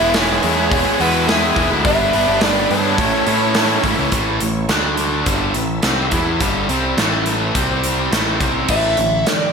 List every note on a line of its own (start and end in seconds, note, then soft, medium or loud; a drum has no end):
0.00 0.38 E1 medium
0.00 0.14 E3 medium
0.00 0.42 E3 medium
0.00 0.14 G#3 medium
0.00 1.82 G#3 medium
0.00 0.29 G#3 medium
0.00 0.14 B3 loud
0.00 1.82 B3 medium
0.00 0.28 B3 medium
0.00 0.14 E4 loud
0.00 1.82 E4 medium
0.00 0.27 E4 medium
0.00 0.11 B4 medium
0.00 1.82 B4 medium
0.00 0.16 E5 loud
0.14 0.43 E3 medium
0.14 0.44 G#3 loud
0.14 0.44 B3 loud
0.14 0.45 E4 loud
0.14 0.68 G#4 medium
0.14 0.70 C#5 medium
0.14 snare loud
0.14 open hi-hat medium
0.29 0.43 G#3 medium
0.29 0.43 B3 medium
0.29 0.43 E4 medium
0.43 0.68 E2 medium
0.43 0.86 E3 medium
0.43 0.59 G#3 medium
0.43 0.58 B3 medium
0.43 0.57 E4 medium
0.43 muted distorted electric guitar stroke medium
0.43 open hi-hat medium
0.57 0.86 G#3 medium
0.57 0.84 B3 medium
0.57 0.84 E4 medium
0.71 0.84 E1 medium
0.71 0.99 E3 medium
0.71 0.99 G#3 loud
0.71 0.99 B3 loud
0.71 1.00 E4 loud
0.71 0.98 G#4 medium
0.71 1.00 C#5 loud
0.71 kick loud
0.71 open hi-hat medium
0.85 0.99 G#3 medium
0.85 1.00 B3 medium
0.85 1.00 E4 medium
0.99 1.50 E2 medium
0.99 1.26 E3 medium
0.99 1.27 G#3 medium
0.99 1.28 B3 medium
0.99 1.28 E4 medium
0.99 1.26 F#4 medium
0.99 1.28 B4 medium
0.99 open hi-hat medium
1.13 1.28 G#3 medium
1.13 1.29 B3 medium
1.13 1.29 E4 medium
1.27 1.55 E3 medium
1.27 1.43 G#3 medium
1.27 1.42 B3 loud
1.27 1.41 E4 loud
1.27 1.67 G#4 medium
1.27 snare loud
1.27 open hi-hat medium
1.31 1.69 E4 medium
1.42 1.56 G#3 medium
1.42 1.57 B3 medium
1.42 1.57 E4 medium
1.56 1.69 E1 medium
1.56 1.83 E3 medium
1.56 1.71 G#3 medium
1.56 1.70 B3 medium
1.56 1.69 E4 medium
1.56 kick medium
1.56 open hi-hat medium
1.70 1.83 D2 medium
1.70 1.84 G#3 medium
1.70 1.83 B3 medium
1.70 1.83 E4 medium
1.85 2.10 G1 loud
1.85 2.27 G2 medium
1.85 2.11 D3 medium
1.85 2.12 G3 loud
1.85 2.98 G3 medium
1.85 2.13 B3 medium
1.85 2.98 B3 medium
1.85 2.98 D4 medium
1.85 2.13 D4 medium
1.85 2.98 B4 medium
1.85 2.40 B4 medium
1.85 2.42 E5 medium
1.85 kick loud
1.85 open hi-hat medium
2.00 2.13 G3 medium
2.00 2.13 B3 medium
2.00 2.14 D4 medium
2.12 2.26 G1 medium
2.12 2.40 G2 medium
2.12 2.27 D3 medium
2.12 2.27 G3 medium
2.12 2.26 B3 medium
2.12 2.26 D4 medium
2.12 open hi-hat medium
2.27 2.66 G1 medium
2.27 2.85 G2 medium
2.27 2.68 D3 medium
2.27 2.56 G3 medium
2.27 2.55 B3 medium
2.27 2.55 D4 medium
2.41 2.97 G2 loud
2.41 2.69 D3 loud
2.41 2.70 G3 medium
2.41 2.70 B3 loud
2.41 2.70 D4 loud
2.41 2.69 B4 medium
2.41 2.71 D5 medium
2.41 snare loud
2.41 open hi-hat medium
2.56 2.68 G3 medium
2.56 2.68 B3 medium
2.56 2.69 D4 medium
2.69 2.97 G2 medium
2.69 2.96 G2 medium
2.69 2.97 D3 medium
2.69 2.84 G3 medium
2.69 2.83 B3 medium
2.69 2.82 D4 medium
2.69 3.80 A4 medium
2.69 3.81 C#5 medium
2.69 muted distorted electric guitar stroke medium
2.69 open hi-hat medium
2.83 2.97 G3 medium
2.83 2.96 B3 medium
2.83 2.96 D4 medium
2.96 3.11 A1 medium
2.96 3.40 A2 medium
2.96 3.25 E3 medium
2.96 4.11 A3 medium
2.96 3.11 A3 medium
2.96 4.10 C#4 medium
2.96 3.11 C#4 loud
2.96 4.10 E4 medium
2.96 3.10 E4 medium
2.96 4.10 C#5 medium
2.96 kick loud
2.96 open hi-hat medium
3.11 3.26 A3 medium
3.11 3.26 C#4 medium
3.11 3.26 E4 medium
3.26 3.77 A2 medium
3.26 3.55 A2 medium
3.26 3.54 E3 medium
3.26 3.54 A3 medium
3.26 3.54 C#4 medium
3.26 3.55 E4 medium
3.26 open hi-hat medium
3.42 3.56 A3 medium
3.42 3.57 C#4 medium
3.42 3.56 E4 medium
3.54 3.98 A2 loud
3.54 3.82 E3 loud
3.54 3.69 A3 medium
3.54 3.69 C#4 loud
3.54 3.67 E4 loud
3.54 snare loud
3.54 open hi-hat medium
3.68 3.83 A3 medium
3.68 3.84 C#4 medium
3.68 3.84 E4 medium
3.83 3.96 A1 medium
3.83 4.10 A2 medium
3.83 4.10 E3 medium
3.83 3.99 A3 medium
3.83 3.98 C#4 medium
3.83 3.97 E4 medium
3.83 kick medium
3.83 open hi-hat medium
3.98 4.11 C#2 medium
3.98 4.11 A3 medium
3.98 4.11 C#4 medium
3.98 4.11 E4 medium
4.12 4.39 A1 medium
4.12 4.40 A2 medium
4.12 4.40 E3 medium
4.12 4.40 A3 medium
4.12 4.69 A3 medium
4.12 4.69 C#4 medium
4.12 4.69 E4 medium
4.12 4.69 C#5 medium
4.12 kick loud
4.12 closed hi-hat medium
4.40 4.68 A1 medium
4.40 4.64 A2 medium
4.40 4.64 E3 medium
4.40 closed hi-hat medium
4.69 5.22 D2 medium
4.69 5.25 D3 medium
4.69 5.25 A3 medium
4.69 5.26 D4 loud
4.69 5.26 D4 medium
4.69 5.26 A4 medium
4.69 5.26 D5 medium
4.69 snare loud
4.69 closed hi-hat medium
4.97 closed hi-hat medium
5.26 5.53 G1 medium
5.26 5.54 G2 medium
5.26 5.54 D3 medium
5.26 5.55 G3 medium
5.26 7.52 C#4 medium
5.26 7.53 E4 medium
5.26 7.53 A4 medium
5.26 7.52 E5 medium
5.26 kick loud
5.26 closed hi-hat medium
5.54 5.82 A1 medium
5.54 5.78 A2 medium
5.54 5.78 E3 medium
5.54 closed hi-hat medium
5.83 6.10 C2 medium
5.83 6.11 C3 medium
5.83 6.12 G3 medium
5.83 6.12 C4 loud
5.83 snare loud
5.83 closed hi-hat medium
6.11 6.39 E2 medium
6.11 6.40 E3 medium
6.11 6.40 B3 medium
6.11 6.40 E4 medium
6.11 kick loud
6.11 closed hi-hat medium
6.40 6.67 G1 medium
6.40 6.68 G2 medium
6.40 6.69 D3 medium
6.40 6.69 G3 medium
6.40 kick medium
6.40 closed hi-hat medium
6.69 6.95 C2 medium
6.69 6.97 C3 medium
6.69 6.97 G3 medium
6.69 6.97 C4 medium
6.69 closed hi-hat medium
6.97 7.51 A1 medium
6.97 7.55 A2 medium
6.97 7.55 E3 medium
6.97 7.55 A3 loud
6.97 snare loud
6.97 closed hi-hat medium
7.26 closed hi-hat medium
7.55 8.08 C2 medium
7.55 8.11 C3 medium
7.55 8.12 G3 medium
7.55 8.11 C4 medium
7.55 8.12 C4 medium
7.55 8.12 G4 medium
7.55 8.11 C5 medium
7.55 kick loud
7.55 closed hi-hat medium
7.84 closed hi-hat medium
8.10 8.38 A1 medium
8.10 8.39 A2 medium
8.10 8.40 E3 medium
8.10 8.68 A3 medium
8.10 8.40 A3 medium
8.10 8.68 C#4 medium
8.10 8.68 E4 medium
8.10 8.67 C#5 medium
8.10 snare loud
8.10 closed hi-hat medium
8.40 8.67 C2 medium
8.40 8.68 C3 medium
8.40 8.68 G3 medium
8.40 8.69 C4 loud
8.40 kick loud
8.40 closed hi-hat medium
8.68 8.94 A1 medium
8.68 8.96 A2 medium
8.68 8.96 D3 medium
8.68 8.97 E3 medium
8.68 8.97 A3 medium
8.68 9.27 E5 medium
8.68 kick medium
8.68 crash medium
8.97 9.23 A1 medium
8.97 9.24 A2 medium
8.97 9.24 D3 medium
8.97 9.24 E3 medium
8.97 closed hi-hat medium
9.27 9.52 A2 medium
9.27 9.53 D3 medium
9.27 9.53 E3 medium
9.27 9.53 D5 medium
9.27 snare loud
9.27 closed hi-hat medium